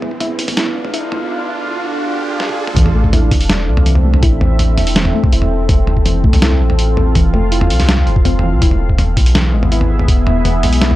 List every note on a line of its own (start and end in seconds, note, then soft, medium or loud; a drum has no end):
0.00 0.40 D1 loud
0.00 1.00 B3 medium
0.00 3.94 D4 medium
0.00 2.77 F4 medium
0.00 2.77 F5 medium
0.00 mid tom medium
0.00 riser medium
0.11 kick medium
0.20 0.38 E4 medium
0.20 8.62 A4 medium
0.20 closed hi-hat medium
0.20 mid tom medium
0.39 0.77 A1 medium
0.39 kick loud
0.39 open hi-hat medium
0.48 mid tom medium
0.48 open hi-hat medium
0.57 0.74 E4 medium
0.57 snare loud
0.57 closed hi-hat medium
0.66 mid tom medium
0.75 1.29 F1 loud
0.85 mid tom medium
0.94 1.11 E4 medium
0.94 closed hi-hat medium
1.12 mid tom medium
2.40 snare medium
2.49 high tom medium
2.67 mid tom medium
2.76 3.33 A1 loud
2.76 2.93 E3 medium
2.76 8.62 C4 medium
2.76 kick loud
2.76 closed hi-hat medium
2.86 mid tom medium
2.90 5.69 E4 medium
2.95 3.11 A3 medium
3.04 kick medium
3.13 3.30 E4 medium
3.13 closed hi-hat medium
3.13 mid tom medium
3.24 5.69 E5 medium
3.31 3.69 E1 medium
3.31 kick loud
3.31 mid tom medium
3.31 open hi-hat medium
3.41 open hi-hat medium
3.50 snare loud
3.50 closed hi-hat medium
3.50 mid tom medium
3.68 4.22 C2 loud
3.77 mid tom medium
3.86 4.03 E3 medium
3.86 closed hi-hat medium
3.95 mid tom medium
4.04 4.21 A3 medium
4.14 mid tom medium
4.23 4.79 A1 loud
4.23 4.40 E4 medium
4.23 kick loud
4.23 closed hi-hat medium
4.41 mid tom medium
4.59 closed hi-hat medium
4.59 mid tom medium
4.78 5.13 E1 medium
4.78 mid tom medium
4.78 open hi-hat medium
4.87 open hi-hat medium
4.96 5.13 E3 medium
4.96 snare loud
4.96 closed hi-hat medium
5.05 mid tom medium
5.14 5.31 A3 medium
5.24 kick loud
5.24 mid tom medium
5.33 5.68 E1 medium
5.33 5.50 E4 medium
5.33 closed hi-hat medium
5.42 mid tom medium
5.69 6.26 F1 loud
5.69 kick loud
5.69 closed hi-hat medium
5.69 mid tom medium
5.87 8.62 F4 medium
5.87 mid tom medium
5.97 kick medium
6.06 6.22 E3 medium
6.06 closed hi-hat medium
6.06 mid tom medium
6.24 6.62 C2 medium
6.24 6.41 A3 medium
6.24 kick loud
6.33 mid tom medium
6.33 open hi-hat medium
6.42 6.60 E4 medium
6.42 snare loud
6.42 closed hi-hat medium
6.48 8.62 F5 medium
6.48 mid tom medium
6.60 7.14 A1 loud
6.70 mid tom soft
6.79 closed hi-hat medium
6.97 mid tom medium
7.15 7.72 F1 loud
7.15 7.32 E3 medium
7.15 kick loud
7.15 closed hi-hat medium
7.15 mid tom soft
7.34 7.50 A3 medium
7.34 mid tom medium
7.52 7.69 E4 medium
7.52 closed hi-hat medium
7.61 mid tom medium
7.70 8.08 C2 medium
7.70 open hi-hat medium
7.80 snare soft
7.80 mid tom soft
7.80 open hi-hat medium
7.89 snare loud
7.89 closed hi-hat medium
7.98 mid tom medium
8.07 8.54 F1 loud
8.07 closed hi-hat soft
8.16 kick loud
8.25 8.42 C4 medium
8.25 closed hi-hat medium
8.25 mid tom medium
8.39 mid tom medium
8.44 8.54 E3 medium
8.53 8.61 C2 loud
8.62 9.18 E1 loud
8.62 10.96 B3 medium
8.62 8.79 E4 medium
8.62 kick loud
8.62 closed hi-hat medium
8.71 10.96 G#4 medium
8.71 mid tom medium
8.78 10.96 E4 medium
8.89 kick medium
8.97 10.96 E5 medium
8.97 closed hi-hat medium
8.97 mid tom medium
9.17 9.55 B1 medium
9.17 kick loud
9.17 mid tom soft
9.17 open hi-hat medium
9.26 open hi-hat medium
9.35 9.52 E3 medium
9.35 snare loud
9.35 closed hi-hat medium
9.35 mid tom soft
9.53 10.07 G#1 loud
9.53 9.70 G#3 medium
9.63 mid tom medium
9.72 9.89 E4 medium
9.72 closed hi-hat medium
9.81 mid tom medium
9.99 mid tom medium
10.08 10.65 E1 loud
10.08 kick loud
10.08 closed hi-hat medium
10.27 mid tom medium
10.45 10.61 E3 medium
10.45 closed hi-hat medium
10.45 mid tom medium
10.63 10.96 B1 medium
10.63 10.80 G#3 medium
10.63 mid tom medium
10.63 open hi-hat medium
10.73 open hi-hat medium
10.81 10.96 E4 medium
10.81 snare loud
10.81 closed hi-hat medium
10.91 mid tom medium